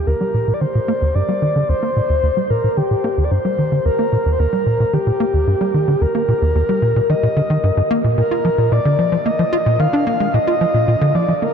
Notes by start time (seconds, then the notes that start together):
0.07 D#2 A#4
0.21 G3
0.34 A#2
0.48 A#2
0.54 D5
0.61 D#3 C5
0.75 A#2
0.88 A#3
1.02 D#2
1.15 G2 D5
1.28 G3
1.42 D#3
1.56 D3
1.69 D#2 C5
1.82 A#3
1.96 A#2
2.09 D#2
2.23 D#2
2.37 G3
2.50 A#2 A#4
2.64 A#2
2.77 D#3 G4
2.91 A#2
3.04 A#3
3.18 D#2
3.24 D5
3.31 G2 C5
3.45 G3
3.58 D#3
3.72 D3
3.85 D#2 A#4
3.99 A#3
4.12 A#2
4.26 D#2
4.32 C5
4.39 D#2 A#4
4.53 G3
4.66 A#2
4.80 A#2
4.93 D#3 G4
5.07 A#2
5.20 A#3
5.34 D#2
5.47 G2
5.61 G3
5.74 D#3
5.88 D3
6.01 D#2 A#4
6.15 A#3
6.28 A#2
6.42 D#2
6.55 D#2
6.69 G3
6.82 A#2
6.96 A#2
7.09 D#3 D#5
7.23 A#2
7.36 D3
7.50 D#3
7.63 G2
7.77 G2
7.91 A#3
8.04 A#2
8.18 A#2 A#4
8.31 F4
8.45 F3
8.58 A#2
8.72 A#2 D5
8.85 D3
8.99 F3
9.12 F3
9.26 A#3 D#5
9.39 F3
9.53 F4
9.66 A#2
9.79 D#3 F5
9.93 D4
10.07 A#3
10.20 G#3
10.34 A#2 D#5
10.47 F4
10.61 F3
10.74 A#2
10.88 A#2
11.01 D3
11.15 F3 D5
11.28 F3
11.42 A#3 A#4